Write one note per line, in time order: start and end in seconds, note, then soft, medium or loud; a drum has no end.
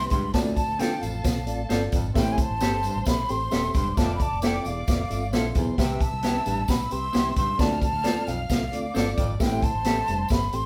0.00 0.14 C4 medium
0.00 0.14 G4 medium
0.00 0.14 B4 medium
0.00 0.33 B4 medium
0.00 0.14 E5 medium
0.00 0.33 B5 medium
0.10 0.29 C#2 loud
0.10 0.29 G2 medium
0.10 0.31 C6 loud
0.10 kick medium
0.10 snare soft
0.10 closed hi-hat medium
0.10 tambourine soft
0.33 0.51 D2 loud
0.33 0.66 D2 medium
0.33 0.59 C4 medium
0.33 0.59 F4 medium
0.33 2.12 A4 medium
0.33 0.59 A4 medium
0.33 0.60 D5 loud
0.33 0.40 A5 medium
0.33 2.12 A5 loud
0.33 kick medium
0.33 snare loud
0.33 closed hi-hat medium
0.33 tambourine medium
0.57 0.81 A5 medium
0.57 kick medium
0.57 closed hi-hat medium
0.57 tambourine medium
0.68 0.77 D2 medium
0.79 0.97 D3 loud
0.79 0.89 C4 medium
0.79 1.04 C4 medium
0.79 1.04 F4 medium
0.79 0.89 F4 medium
0.79 1.05 A4 medium
0.79 0.90 A4 medium
0.79 1.05 F5 medium
0.79 1.03 G5 medium
0.79 snare loud
0.79 closed hi-hat medium
0.79 tambourine medium
1.02 1.20 A1 medium
1.02 1.20 F2 medium
1.02 1.93 F5 medium
1.02 closed hi-hat medium
1.02 tambourine medium
1.24 1.47 B1 medium
1.24 1.37 C4 medium
1.24 1.37 F4 medium
1.24 1.37 A4 medium
1.24 1.37 C5 medium
1.24 kick loud
1.24 snare medium
1.24 closed hi-hat medium
1.24 tambourine loud
1.46 1.65 A1 medium
1.46 1.59 C4 medium
1.46 1.60 F4 medium
1.46 1.60 A4 medium
1.46 1.60 D5 medium
1.46 closed hi-hat medium
1.46 tambourine soft
1.69 1.87 G1 medium
1.69 1.80 C4 medium
1.69 1.95 C4 medium
1.69 1.95 F4 medium
1.69 1.80 F4 medium
1.69 1.95 A4 medium
1.69 1.80 A4 medium
1.69 1.95 D5 medium
1.69 snare loud
1.69 closed hi-hat medium
1.69 tambourine medium
1.92 2.10 G#1 medium
1.92 2.11 F2 medium
1.92 kick loud
1.92 snare soft
1.92 closed hi-hat medium
1.92 tambourine soft
2.14 2.33 A1 loud
2.14 2.48 A2 medium
2.14 2.40 C4 medium
2.14 2.41 G4 medium
2.14 2.40 A4 medium
2.14 3.93 C5 medium
2.14 2.41 E5 loud
2.14 2.34 G5 medium
2.14 3.93 C6 medium
2.14 kick medium
2.14 snare medium
2.14 closed hi-hat medium
2.14 tambourine medium
2.32 2.42 G#5 medium
2.38 3.09 A5 loud
2.38 kick medium
2.38 closed hi-hat medium
2.38 tambourine medium
2.50 2.59 A1 medium
2.60 2.87 G1 medium
2.60 2.86 C4 medium
2.60 2.71 C4 medium
2.60 2.86 G4 medium
2.60 2.71 G4 medium
2.60 2.86 A4 medium
2.60 2.71 A4 medium
2.60 2.86 G5 medium
2.60 snare medium
2.60 closed hi-hat medium
2.60 tambourine medium
2.83 3.02 G2 medium
2.83 closed hi-hat medium
2.83 tambourine medium
2.96 3.04 A1 medium
3.05 3.24 B1 medium
3.05 3.18 C4 medium
3.05 3.19 G4 medium
3.05 3.19 A4 medium
3.05 3.19 E5 medium
3.05 3.32 B5 medium
3.05 kick medium
3.05 snare loud
3.05 closed hi-hat medium
3.05 tambourine loud
3.29 3.47 A1 medium
3.29 3.41 C4 medium
3.29 3.42 G4 medium
3.29 3.42 A4 medium
3.29 3.42 G5 medium
3.29 3.75 C6 loud
3.29 closed hi-hat medium
3.29 tambourine soft
3.50 3.70 D#1 medium
3.50 3.76 C4 medium
3.50 3.61 C4 medium
3.50 3.76 G4 medium
3.50 3.62 G4 medium
3.50 3.76 A4 medium
3.50 3.62 A4 medium
3.50 3.77 E5 medium
3.50 snare loud
3.50 closed hi-hat medium
3.50 tambourine medium
3.74 3.92 E1 medium
3.74 3.93 G2 medium
3.74 3.99 C6 loud
3.74 kick medium
3.74 snare soft
3.74 closed hi-hat medium
3.74 tambourine medium
3.96 4.15 F1 loud
3.96 4.29 F2 medium
3.96 4.22 C4 medium
3.96 4.22 F4 medium
3.96 4.22 A4 medium
3.96 5.30 D5 medium
3.96 4.22 E5 loud
3.96 4.14 A5 medium
3.96 5.30 D6 loud
3.96 kick loud
3.96 snare loud
3.96 closed hi-hat medium
3.96 tambourine medium
4.15 4.23 B5 medium
4.20 4.43 A5 medium
4.20 kick medium
4.20 closed hi-hat medium
4.20 tambourine medium
4.32 4.58 F1 medium
4.42 4.67 C4 medium
4.42 4.52 C4 medium
4.42 4.53 E4 medium
4.42 4.67 F4 medium
4.42 4.68 A4 medium
4.42 4.53 A4 medium
4.42 4.68 E5 medium
4.42 4.68 G5 medium
4.42 snare loud
4.42 closed hi-hat medium
4.42 tambourine medium
4.65 4.83 E1 medium
4.65 4.83 E2 medium
4.65 5.56 F5 medium
4.65 closed hi-hat medium
4.65 tambourine medium
4.87 5.05 F1 medium
4.87 5.00 C4 medium
4.87 5.00 F4 medium
4.87 5.00 A4 medium
4.87 5.00 E5 medium
4.87 kick loud
4.87 snare medium
4.87 closed hi-hat medium
4.87 tambourine loud
5.10 5.33 G1 medium
5.10 5.22 C4 medium
5.10 5.23 F4 medium
5.10 5.23 A4 medium
5.10 5.23 E5 medium
5.10 closed hi-hat medium
5.10 tambourine soft
5.33 5.50 A#1 medium
5.33 5.43 C4 medium
5.33 5.58 C4 medium
5.33 5.43 E4 medium
5.33 5.58 F4 medium
5.33 5.58 A4 medium
5.33 5.44 A4 medium
5.33 5.77 C5 medium
5.33 5.58 E5 medium
5.33 5.77 C6 medium
5.33 snare loud
5.33 closed hi-hat medium
5.33 tambourine medium
5.55 5.73 B1 medium
5.55 5.74 E2 medium
5.55 kick loud
5.55 closed hi-hat medium
5.55 tambourine soft
5.78 5.95 C2 medium
5.78 6.10 C3 medium
5.78 6.03 C4 medium
5.78 6.03 G4 medium
5.78 6.03 B4 medium
5.78 6.03 E5 medium
5.78 6.68 E5 medium
5.78 6.03 G5 medium
5.78 6.68 E6 medium
5.78 kick medium
5.78 snare loud
5.78 closed hi-hat medium
5.78 tambourine medium
6.00 6.72 A5 medium
6.00 kick medium
6.00 closed hi-hat medium
6.00 tambourine medium
6.12 6.38 C2 medium
6.22 6.33 B3 medium
6.22 6.49 C4 medium
6.22 6.34 E4 medium
6.22 6.34 G4 medium
6.22 6.49 G4 medium
6.22 6.49 B4 medium
6.22 6.49 E5 medium
6.22 snare loud
6.22 closed hi-hat medium
6.22 tambourine medium
6.46 6.64 A1 medium
6.46 6.64 G2 medium
6.46 closed hi-hat medium
6.46 tambourine medium
6.68 6.86 B1 medium
6.68 6.81 C4 medium
6.68 6.81 G4 medium
6.68 6.82 B4 medium
6.68 7.58 E5 medium
6.68 6.82 G5 medium
6.68 6.93 B5 medium
6.68 7.58 E6 medium
6.68 kick medium
6.68 snare loud
6.68 closed hi-hat medium
6.68 tambourine loud
6.91 7.09 C2 medium
6.91 7.03 C4 medium
6.91 7.04 G4 medium
6.91 7.04 B4 medium
6.91 7.04 G5 medium
6.91 7.37 C6 loud
6.91 closed hi-hat medium
6.91 tambourine soft
7.13 7.32 C2 medium
7.13 7.23 B3 medium
7.13 7.39 C4 medium
7.13 7.24 E4 medium
7.13 7.39 G4 medium
7.13 7.24 G4 medium
7.13 7.39 B4 medium
7.13 7.39 E5 medium
7.13 snare loud
7.13 closed hi-hat medium
7.13 tambourine medium
7.36 7.54 C#2 medium
7.36 7.55 G2 medium
7.36 7.62 C6 medium
7.36 kick medium
7.36 snare soft
7.36 closed hi-hat medium
7.36 tambourine soft
7.58 7.77 D2 loud
7.58 7.91 D2 medium
7.58 7.84 C4 medium
7.58 7.84 F4 medium
7.58 7.84 A4 medium
7.58 7.84 D5 loud
7.58 8.70 F5 medium
7.58 7.82 A5 medium
7.58 8.70 F6 medium
7.58 kick medium
7.58 snare loud
7.58 closed hi-hat medium
7.58 tambourine medium
7.82 8.29 A5 loud
7.82 kick medium
7.82 closed hi-hat medium
7.82 tambourine medium
7.93 8.19 D2 medium
8.03 8.29 C4 medium
8.03 8.14 C4 medium
8.03 8.29 F4 medium
8.03 8.14 F4 medium
8.03 8.29 A4 medium
8.03 8.14 A4 medium
8.03 8.29 D5 medium
8.03 snare loud
8.03 closed hi-hat medium
8.03 tambourine medium
8.27 8.45 B1 medium
8.27 8.45 F2 medium
8.27 9.18 F5 medium
8.27 closed hi-hat medium
8.27 tambourine medium
8.50 8.67 C2 medium
8.50 8.62 C4 medium
8.50 8.62 F4 medium
8.50 8.63 A4 medium
8.50 8.62 E5 medium
8.50 kick medium
8.50 snare loud
8.50 closed hi-hat medium
8.50 tambourine medium
8.72 8.90 D2 medium
8.72 8.84 C4 medium
8.72 8.84 F4 medium
8.72 8.85 A4 medium
8.72 9.39 D5 medium
8.72 8.85 D5 medium
8.72 9.38 D6 medium
8.72 closed hi-hat medium
8.72 tambourine soft
8.94 9.13 G1 medium
8.94 9.19 C4 medium
8.94 9.04 C4 medium
8.94 9.20 F4 medium
8.94 9.05 F4 medium
8.94 9.20 A4 medium
8.94 9.05 A4 medium
8.94 9.20 D5 medium
8.94 snare loud
8.94 closed hi-hat medium
8.94 tambourine medium
9.17 9.35 G#1 medium
9.17 9.36 F2 medium
9.17 kick medium
9.17 closed hi-hat medium
9.17 tambourine medium
9.40 9.58 A1 loud
9.40 9.72 A2 medium
9.40 9.65 C4 medium
9.40 9.65 G4 medium
9.40 9.65 A4 medium
9.40 10.66 C5 medium
9.40 9.65 E5 medium
9.40 9.65 G5 medium
9.40 10.66 C6 medium
9.40 kick medium
9.40 snare loud
9.40 closed hi-hat medium
9.40 tambourine medium
9.62 10.31 A5 loud
9.62 kick medium
9.62 closed hi-hat medium
9.62 tambourine soft
9.75 10.01 A1 loud
9.84 9.95 C4 medium
9.84 10.11 C4 medium
9.84 9.95 G4 medium
9.84 10.11 G4 medium
9.84 10.11 A4 medium
9.84 9.96 A4 medium
9.84 10.11 E5 medium
9.84 snare loud
9.84 closed hi-hat medium
9.84 tambourine medium
10.07 10.26 F1 medium
10.07 10.26 G2 medium
10.07 closed hi-hat medium
10.07 tambourine medium
10.28 10.48 G1 medium
10.28 10.43 C4 medium
10.28 10.43 G4 medium
10.28 10.43 A4 medium
10.28 10.44 E5 medium
10.28 10.56 B5 loud
10.28 kick medium
10.28 snare medium
10.28 closed hi-hat medium
10.28 tambourine medium
10.52 10.66 A1 medium
10.52 10.65 C4 medium
10.52 10.66 G4 medium
10.52 10.66 A4 medium
10.52 10.66 G5 medium
10.52 10.66 C6 medium
10.52 closed hi-hat medium
10.52 tambourine soft